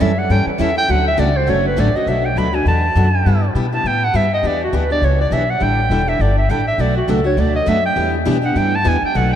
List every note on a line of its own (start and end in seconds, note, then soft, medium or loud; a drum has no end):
0.00 0.29 F#2 medium
0.00 0.10 E3 medium
0.00 0.11 G3 medium
0.00 0.11 C#4 loud
0.00 0.11 E4 loud
0.00 0.11 A4 loud
0.00 0.20 E5 medium
0.19 0.33 F#5 loud
0.30 0.46 G2 medium
0.30 0.49 E3 medium
0.30 0.49 G3 medium
0.30 0.49 C#4 medium
0.30 0.49 E4 medium
0.30 0.50 A4 medium
0.30 0.48 G5 loud
0.46 0.62 B4 medium
0.46 muted upright bass stroke soft
0.59 0.88 E2 medium
0.59 0.70 E3 medium
0.59 0.70 G3 medium
0.59 0.70 C#4 loud
0.59 0.70 E4 loud
0.59 0.71 A4 loud
0.59 0.77 E5 medium
0.75 0.88 C#4 soft
0.75 0.88 E4 medium
0.75 0.88 A4 medium
0.75 0.92 G5 loud
0.88 1.17 D2 medium
0.88 1.07 D3 medium
0.88 1.07 F#3 medium
0.88 1.08 A3 medium
0.88 1.08 C#4 medium
0.88 1.08 F#4 medium
0.88 1.08 A4 medium
0.88 1.07 F#5 loud
1.08 1.21 E5 loud
1.18 1.47 C#2 medium
1.18 1.28 D3 medium
1.18 1.29 F#3 medium
1.18 1.29 A3 loud
1.18 1.29 C#4 medium
1.18 1.29 F#4 loud
1.18 1.28 A4 loud
1.18 1.38 D5 medium
1.37 1.51 C5 medium
1.47 1.76 F#1 medium
1.47 1.66 D3 medium
1.47 1.67 F#3 medium
1.47 1.67 A3 medium
1.47 1.67 C#4 medium
1.47 1.67 F#4 medium
1.47 1.67 A4 medium
1.47 1.66 C#5 loud
1.67 1.81 B4 medium
1.77 1.93 A1 loud
1.77 1.88 D3 loud
1.77 1.88 F#3 medium
1.77 1.88 A3 loud
1.77 1.88 C#4 loud
1.77 1.88 F#4 medium
1.77 1.88 A4 medium
1.77 1.97 D5 medium
1.94 2.06 A3 soft
1.94 2.08 C#4 medium
1.94 2.07 F#4 medium
1.94 2.10 D#5 medium
1.94 muted upright bass stroke soft
2.06 2.35 B1 medium
2.06 2.26 B2 medium
2.06 2.26 F#3 medium
2.06 2.26 A3 medium
2.06 2.26 D4 medium
2.06 2.26 F#4 medium
2.06 2.27 E5 medium
2.25 2.39 G5 medium
2.36 2.65 D2 medium
2.36 2.47 B2 medium
2.36 2.47 F#3 medium
2.36 2.47 A3 medium
2.36 2.48 D4 medium
2.36 2.48 F#4 medium
2.36 2.56 B5 loud
2.53 2.65 A3 soft
2.53 2.65 D4 soft
2.53 2.65 F#4 medium
2.53 2.67 G#5 medium
2.65 2.94 E2 medium
2.65 2.85 B2 medium
2.65 2.85 F#3 medium
2.65 2.85 A3 medium
2.65 2.85 D4 medium
2.65 2.85 F#4 medium
2.65 3.51 A5 loud
2.95 3.24 F#2 medium
2.95 3.06 B2 medium
2.95 3.06 F#3 medium
2.95 3.06 A3 medium
2.95 3.06 D4 loud
2.95 3.06 F#4 loud
3.26 3.54 G2 medium
3.26 3.44 G3 medium
3.26 3.44 B3 medium
3.26 3.45 E4 medium
3.26 3.45 G4 medium
3.55 3.83 B2 medium
3.55 3.65 G3 medium
3.55 3.65 B3 medium
3.55 3.66 E4 medium
3.55 3.66 G4 medium
3.73 3.84 B3 soft
3.73 3.84 E4 medium
3.73 3.84 G4 medium
3.73 3.89 A5 medium
3.84 4.13 A2 medium
3.84 4.03 G3 medium
3.84 4.04 B3 medium
3.84 4.04 E4 medium
3.84 4.04 G4 medium
3.84 4.05 G5 medium
4.04 4.17 F#5 loud
4.14 4.42 G2 medium
4.14 4.24 G3 medium
4.14 4.24 B3 medium
4.14 4.25 E4 medium
4.14 4.25 G4 loud
4.14 4.32 E5 medium
4.34 4.48 D#5 medium
4.43 4.71 E2 medium
4.43 4.62 E3 medium
4.43 4.63 B3 medium
4.43 4.63 D4 medium
4.43 4.63 G4 medium
4.43 4.62 D5 medium
4.63 4.77 F#4 medium
4.72 5.01 D2 medium
4.72 4.83 E3 medium
4.72 4.83 B3 medium
4.72 4.83 D4 medium
4.72 4.84 G4 medium
4.72 4.91 B4 medium
4.90 5.01 B3 soft
4.90 5.02 D4 medium
4.90 5.02 G4 medium
4.90 5.06 D5 loud
5.01 5.30 C#2 medium
5.01 5.21 E3 medium
5.01 5.21 B3 medium
5.01 5.21 D4 medium
5.01 5.22 G4 medium
5.01 5.20 C#5 medium
5.21 5.35 D5 medium
5.31 5.60 B1 medium
5.31 5.42 E3 medium
5.31 5.42 B3 medium
5.31 5.42 D4 loud
5.31 5.42 G4 medium
5.31 5.52 E5 medium
5.50 5.64 F#5 loud
5.60 5.89 A1 medium
5.60 5.79 D3 medium
5.60 5.80 G3 medium
5.60 5.80 D4 medium
5.60 5.80 E4 medium
5.60 5.80 A4 medium
5.60 6.10 G5 loud
5.90 6.19 E1 medium
5.90 6.01 D3 medium
5.90 6.01 G3 medium
5.90 6.01 D4 medium
5.90 6.01 E4 medium
5.90 6.01 A4 medium
6.07 6.20 D4 soft
6.07 6.20 E4 medium
6.07 6.19 A4 medium
6.07 6.23 E5 medium
6.19 6.48 G1 medium
6.19 6.39 D3 medium
6.19 6.39 G3 medium
6.19 6.39 D4 medium
6.19 6.40 E4 medium
6.19 6.40 A4 medium
6.19 6.38 D5 medium
6.38 6.52 E5 medium
6.49 6.77 A1 medium
6.49 6.60 D3 medium
6.49 6.60 G3 medium
6.49 6.60 D4 medium
6.49 6.60 E4 medium
6.49 6.61 A4 medium
6.49 6.67 G5 loud
6.67 6.82 E5 medium
6.78 7.07 B1 medium
6.78 6.97 B2 medium
6.78 6.98 F#3 medium
6.78 6.98 A3 medium
6.78 6.98 D4 medium
6.78 6.98 F#4 medium
6.78 6.98 B4 medium
6.78 6.97 D5 medium
6.97 7.12 F#4 medium
7.08 7.36 C#2 medium
7.08 7.18 B2 medium
7.08 7.19 F#3 medium
7.08 7.19 A3 medium
7.08 7.19 D4 medium
7.08 7.19 F#4 medium
7.08 7.26 A4 medium
7.08 7.19 B4 medium
7.24 7.37 A3 soft
7.24 7.37 D4 medium
7.24 7.37 F#4 medium
7.24 7.42 C#5 medium
7.37 7.66 D2 medium
7.37 7.56 B2 medium
7.37 7.56 F#3 medium
7.37 7.57 A3 medium
7.37 7.57 D4 medium
7.37 7.57 F#4 medium
7.37 7.57 B4 medium
7.37 7.55 D5 medium
7.56 7.70 D#5 medium
7.66 7.95 F#2 medium
7.66 7.77 B2 medium
7.66 7.77 F#3 medium
7.66 7.77 A3 medium
7.66 7.78 D4 medium
7.66 7.78 F#4 medium
7.66 7.78 B4 loud
7.66 7.85 E5 loud
7.86 8.12 G5 loud
7.96 8.25 E2 medium
7.96 8.15 E3 medium
7.96 8.15 G3 medium
7.96 8.15 B3 medium
7.96 8.16 D4 medium
7.96 8.16 E4 medium
7.96 8.16 G4 medium
7.96 8.16 B4 medium
8.25 8.55 B2 medium
8.25 8.36 E3 loud
8.25 8.36 G3 medium
8.25 8.37 B3 medium
8.25 8.37 D4 loud
8.25 8.37 E4 loud
8.25 8.37 G4 loud
8.25 8.37 B4 medium
8.42 8.55 B3 soft
8.42 8.55 D4 medium
8.42 8.55 G4 medium
8.42 8.59 F#5 medium
8.55 8.84 G2 medium
8.55 8.75 E3 medium
8.55 8.75 G3 medium
8.55 8.75 B3 medium
8.55 8.75 D4 medium
8.55 8.75 E4 medium
8.55 8.75 G4 medium
8.55 8.75 B4 medium
8.55 8.77 G5 medium
8.76 8.90 A5 loud
8.84 9.01 E2 medium
8.84 8.95 E3 medium
8.84 8.96 G3 medium
8.84 8.95 B3 medium
8.84 8.95 D4 loud
8.84 8.96 E4 medium
8.84 8.96 G4 loud
8.84 8.96 B4 loud
8.84 9.04 G#5 loud
9.02 9.18 G5 medium
9.02 muted upright bass stroke soft
9.14 9.36 B1 medium
9.14 9.33 B2 medium
9.14 9.34 F#3 medium
9.14 9.34 A3 medium
9.14 9.34 D4 medium
9.14 9.34 F#4 medium
9.14 9.34 B4 medium
9.14 9.33 F#5 medium